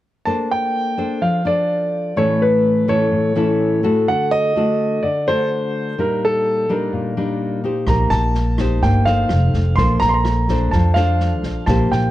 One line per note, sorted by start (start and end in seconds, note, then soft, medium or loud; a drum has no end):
0.26 1.19 A#3 medium
0.26 0.94 D4 medium
0.26 0.94 A4 soft
0.26 0.95 C5 medium
0.26 0.48 A5 medium
0.52 1.24 G5 loud
0.98 1.41 D4 soft
0.98 1.42 A4 medium
0.98 1.42 C5 medium
1.21 2.14 F3 soft
1.21 1.46 F5 medium
1.45 2.13 D4 medium
1.45 2.13 A4 soft
1.45 2.13 C5 medium
1.45 2.20 D5 medium
2.16 3.09 A2 medium
2.16 2.84 E3 medium
2.16 2.84 A3 soft
2.16 2.85 C#4 medium
2.16 2.85 E4 soft
2.16 2.85 A4 medium
2.16 2.41 C#5 medium
2.42 2.90 B4 medium
2.88 3.32 E3 medium
2.88 3.32 A3 medium
2.88 3.32 C#4 medium
2.88 3.32 E4 medium
2.88 3.32 A4 medium
2.88 3.80 C#5 medium
3.11 4.04 A2 soft
3.35 3.79 E3 medium
3.35 3.79 A3 medium
3.35 3.80 C#4 soft
3.35 3.80 E4 medium
3.35 3.80 A4 medium
3.83 4.55 A3 medium
3.83 4.56 F#4 medium
3.83 4.56 A4 medium
4.07 5.00 D3 soft
4.07 4.32 F#5 medium
4.31 5.05 D#5 loud
4.56 5.02 A3 soft
4.56 5.03 D4 soft
4.56 5.03 F#4 medium
4.56 5.03 A4 medium
5.03 5.95 D3 soft
5.03 5.27 D5 medium
5.27 5.94 A3 soft
5.27 5.94 D4 medium
5.27 5.94 F#4 medium
5.27 5.94 A4 medium
5.27 6.00 C5 medium
5.98 6.90 A#2 soft
5.98 6.65 G3 soft
5.98 6.65 D4 soft
5.98 6.66 D#4 medium
5.98 6.21 A#4 medium
6.25 6.72 A4 medium
6.69 7.13 G3 medium
6.69 7.13 D4 medium
6.69 7.13 D#4 medium
6.69 7.61 A#4 medium
6.93 7.85 A#2 soft
7.17 7.60 G3 soft
7.17 7.60 D4 soft
7.17 7.61 D#4 medium
7.64 8.31 D#4 medium
7.64 8.32 G4 medium
7.64 8.32 C5 medium
7.87 8.09 A#1 medium
7.87 8.81 A#3 medium
7.87 8.12 A#5 medium
7.87 kick medium
7.87 cross-stick medium
7.87 snare soft
8.10 8.78 A#1 medium
8.10 8.84 A5 medium
8.10 snare soft
8.34 snare soft
8.58 9.03 D#4 medium
8.58 9.03 G4 medium
8.58 9.03 C5 medium
8.58 kick soft
8.58 cross-stick medium
8.58 snare soft
8.82 9.27 G1 medium
8.82 9.28 A#3 soft
8.82 9.07 G5 medium
8.82 kick medium
8.82 snare soft
9.05 9.74 D#4 medium
9.05 9.74 A4 medium
9.05 9.74 C5 medium
9.05 9.79 F5 medium
9.05 snare soft
9.29 9.52 F1 medium
9.29 cross-stick medium
9.29 snare soft
9.54 9.76 F1 medium
9.54 kick soft
9.54 snare soft
9.76 10.00 A#1 loud
9.76 10.70 A#3 medium
9.76 10.45 D4 medium
9.76 10.45 A4 soft
9.76 10.46 C5 medium
9.76 10.01 C6 medium
9.76 kick medium
9.76 snare soft
10.00 10.69 A#1 medium
10.00 10.08 A#5 loud
10.00 snare soft
10.09 10.16 C6 medium
10.14 10.74 A#5 medium
10.25 cross-stick medium
10.25 snare soft
10.48 10.93 D4 medium
10.48 10.93 A4 medium
10.48 10.94 C5 medium
10.48 kick soft
10.48 snare soft
10.71 11.44 F2 medium
10.71 11.66 F3 soft
10.71 10.97 A5 medium
10.71 kick medium
10.71 snare soft
10.94 11.64 D4 medium
10.94 11.64 A4 medium
10.94 11.64 C5 medium
10.94 11.69 F5 medium
10.94 cross-stick soft
10.94 snare soft
11.20 snare soft
11.43 11.66 A#1 medium
11.43 kick soft
11.43 snare soft
11.66 11.90 A#1 medium
11.66 12.11 A#3 medium
11.66 12.11 E4 soft
11.66 12.11 G4 medium
11.66 12.11 C5 medium
11.66 11.89 A5 medium
11.66 kick medium
11.66 cross-stick medium
11.66 snare soft
11.91 12.11 A#1 medium
11.91 12.11 G5 medium
11.91 snare soft